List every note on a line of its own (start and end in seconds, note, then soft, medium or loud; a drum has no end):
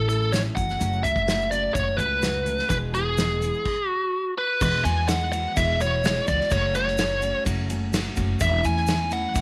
0.00 0.45 A1 medium
0.08 0.31 A3 soft
0.08 0.32 C#4 soft
0.08 0.32 E4 soft
0.08 0.33 A4 medium
0.08 closed hi-hat medium
0.08 shaker medium
0.22 shaker soft
0.32 0.56 A2 medium
0.32 0.56 E3 medium
0.32 0.55 A3 medium
0.32 0.54 C#4 medium
0.32 0.54 E4 medium
0.32 0.39 C#5 medium
0.32 snare loud
0.32 closed hi-hat medium
0.32 shaker medium
0.55 0.77 F#1 medium
0.55 0.78 F#3 soft
0.55 0.78 A3 soft
0.55 0.79 C#4 soft
0.55 0.79 F#4 medium
0.55 1.05 F#5 medium
0.55 kick loud
0.55 closed hi-hat medium
0.55 shaker medium
0.69 snare soft
0.69 shaker soft
0.78 1.01 F#1 medium
0.78 1.03 F#2 medium
0.78 1.03 C#3 medium
0.78 1.03 F#3 medium
0.78 1.03 A3 medium
0.78 1.01 C#4 medium
0.78 1.01 F#4 medium
0.78 closed hi-hat medium
0.78 shaker medium
0.93 shaker soft
1.02 1.14 C#2 medium
1.02 1.25 F#3 soft
1.02 1.26 A3 medium
1.02 1.26 C#4 soft
1.02 1.26 F#4 medium
1.02 1.51 E5 medium
1.02 closed hi-hat medium
1.02 shaker medium
1.16 1.66 F#1 medium
1.16 kick medium
1.16 shaker soft
1.26 1.51 F#2 medium
1.26 1.51 C#3 medium
1.26 1.51 F#3 medium
1.26 1.51 A3 medium
1.26 1.50 C#4 medium
1.26 1.49 F#4 medium
1.26 snare loud
1.26 closed hi-hat medium
1.26 shaker medium
1.41 shaker soft
1.51 1.73 F#3 soft
1.51 1.74 A3 soft
1.51 1.75 C#4 soft
1.51 1.75 F#4 soft
1.51 1.74 D5 medium
1.51 closed hi-hat medium
1.51 shaker medium
1.74 1.95 F#1 medium
1.74 1.98 F#3 medium
1.74 1.98 A3 medium
1.74 1.97 C#4 medium
1.74 1.96 F#4 medium
1.74 1.99 C#5 medium
1.74 kick loud
1.74 closed hi-hat medium
1.74 shaker medium
1.97 2.59 C#2 medium
1.97 2.21 F#3 soft
1.97 2.21 A3 soft
1.97 2.21 C#4 soft
1.97 2.21 F#4 soft
1.97 2.68 B4 medium
1.97 closed hi-hat medium
1.97 shaker medium
2.21 2.46 F#2 medium
2.21 2.46 C#3 medium
2.21 2.46 F#3 medium
2.21 2.45 A3 medium
2.21 2.45 C#4 medium
2.21 2.43 F#4 medium
2.21 snare loud
2.21 closed hi-hat medium
2.21 shaker medium
2.45 2.68 F#3 soft
2.45 2.68 A3 soft
2.45 2.69 C#4 medium
2.45 2.69 F#4 medium
2.45 closed hi-hat medium
2.45 shaker medium
2.58 snare soft
2.58 shaker soft
2.67 3.50 E1 loud
2.67 2.93 E2 medium
2.67 2.93 B2 medium
2.67 2.93 E3 medium
2.67 2.93 G#3 medium
2.67 2.92 B3 medium
2.67 2.91 G#4 medium
2.67 2.76 B4 medium
2.67 kick loud
2.67 closed hi-hat medium
2.67 shaker medium
2.92 3.16 E3 soft
2.92 3.17 G#3 soft
2.92 3.17 B3 medium
2.92 3.17 G#4 medium
2.92 3.88 G#4 medium
2.92 closed hi-hat medium
2.92 shaker medium
3.17 3.41 E2 medium
3.17 3.42 B2 medium
3.17 3.42 E3 medium
3.17 3.41 G#3 medium
3.17 3.40 B3 medium
3.17 3.39 G#4 medium
3.17 snare loud
3.17 closed hi-hat medium
3.17 shaker medium
3.41 3.66 E3 soft
3.41 3.66 G#3 soft
3.41 3.66 B3 soft
3.41 3.65 G#4 medium
3.41 closed hi-hat medium
3.41 shaker medium
3.54 shaker soft
3.65 kick loud
3.65 crash medium
3.88 4.33 F#4 medium
4.38 4.60 B4 medium
4.61 4.81 E1 loud
4.61 4.85 E2 medium
4.61 4.85 B2 medium
4.61 4.85 E3 medium
4.61 4.85 G#3 medium
4.61 4.84 B3 medium
4.61 4.83 F#4 medium
4.61 4.84 B4 medium
4.61 kick loud
4.61 crash loud
4.61 shaker medium
4.84 5.45 E2 medium
4.84 5.06 E3 soft
4.84 5.07 G#3 soft
4.84 5.08 B3 medium
4.84 5.08 F#4 medium
4.84 5.08 G#5 medium
4.84 ride medium
4.84 shaker medium
5.07 5.32 E3 medium
5.07 5.31 G#3 medium
5.07 5.30 B3 medium
5.07 5.29 F#4 medium
5.07 5.31 F#5 medium
5.07 snare loud
5.07 ride loud
5.07 shaker medium
5.31 5.55 E3 soft
5.31 5.55 G#3 medium
5.31 5.56 B3 medium
5.31 5.55 F#4 medium
5.31 5.57 F#5 loud
5.31 ride medium
5.31 shaker medium
5.56 6.17 E1 loud
5.56 5.80 E2 medium
5.56 5.80 B2 medium
5.56 5.80 E3 medium
5.56 5.80 G#3 medium
5.56 5.79 B3 medium
5.56 5.78 F#4 medium
5.56 5.81 E5 medium
5.56 kick loud
5.56 ride loud
5.56 shaker medium
5.79 6.01 E3 soft
5.79 6.02 G#3 soft
5.79 6.02 B3 soft
5.79 6.03 F#4 medium
5.79 6.25 C#5 medium
5.79 ride medium
5.79 shaker medium
6.02 6.27 E3 medium
6.02 6.26 G#3 medium
6.02 6.25 B3 medium
6.02 6.24 F#4 medium
6.02 snare loud
6.02 ride loud
6.02 shaker medium
6.25 6.38 C#2 medium
6.25 6.50 E3 soft
6.25 6.50 G#3 medium
6.25 6.50 B3 medium
6.25 6.50 F#4 medium
6.25 6.52 D5 medium
6.25 kick medium
6.25 ride medium
6.25 shaker medium
6.41 snare soft
6.49 7.31 F#1 loud
6.49 6.74 F#2 medium
6.49 6.74 C#3 medium
6.49 6.74 F#3 medium
6.49 6.74 A3 medium
6.49 6.73 C#4 medium
6.49 6.72 F#4 medium
6.49 6.75 C#5 medium
6.49 kick loud
6.49 ride loud
6.49 shaker loud
6.73 6.96 F#3 medium
6.73 6.97 A3 soft
6.73 6.98 C#4 medium
6.73 6.98 F#4 medium
6.73 7.43 C#5 medium
6.73 ride medium
6.73 shaker medium
6.88 snare soft
6.97 7.22 F#3 medium
6.97 7.22 A3 medium
6.97 7.21 C#4 medium
6.97 7.20 F#4 medium
6.97 snare loud
6.97 ride loud
6.97 shaker loud
7.21 7.44 F#3 soft
7.21 7.44 A3 soft
7.21 7.45 C#4 medium
7.21 7.45 F#4 medium
7.21 ride medium
7.21 shaker medium
7.45 8.06 F#1 loud
7.45 7.69 F#2 medium
7.45 7.69 C#3 medium
7.45 7.69 F#3 loud
7.45 7.70 A3 medium
7.45 7.69 C#4 medium
7.45 7.68 F#4 loud
7.45 kick loud
7.45 ride loud
7.45 shaker medium
7.69 7.91 F#3 soft
7.69 7.92 A3 medium
7.69 7.93 C#4 medium
7.69 7.93 F#4 medium
7.69 ride medium
7.69 shaker medium
7.92 8.17 F#3 medium
7.92 8.16 A3 medium
7.92 8.16 C#4 medium
7.92 8.15 F#4 medium
7.92 snare loud
7.92 ride loud
7.92 shaker loud
8.16 8.37 F#1 medium
8.16 8.40 F#3 soft
8.16 8.39 A3 medium
8.16 8.40 C#4 medium
8.16 8.40 F#4 medium
8.16 kick medium
8.16 ride medium
8.16 shaker medium
8.40 8.61 E1 loud
8.40 8.64 E3 medium
8.40 8.64 A3 medium
8.40 8.64 C#4 medium
8.40 8.62 E4 medium
8.40 8.65 E5 loud
8.40 kick loud
8.40 ride loud
8.40 shaker loud
8.63 9.24 E2 medium
8.63 8.87 A3 medium
8.63 8.88 C#4 medium
8.63 8.87 E4 medium
8.63 9.13 G#5 loud
8.63 ride medium
8.63 shaker medium
8.77 snare soft
8.87 9.11 E3 medium
8.87 9.11 A3 medium
8.87 9.10 C#4 medium
8.87 9.09 E4 medium
8.87 snare loud
8.87 ride loud
8.87 shaker loud
9.10 9.33 A3 soft
9.10 9.33 C#4 soft
9.10 9.34 E4 medium
9.10 9.41 F#5 loud
9.10 ride medium
9.10 shaker medium
9.33 9.41 E1 loud
9.33 9.41 E3 medium
9.33 9.41 A3 medium
9.33 9.41 C#4 medium
9.33 9.41 E4 medium
9.33 kick loud
9.33 ride loud
9.33 shaker loud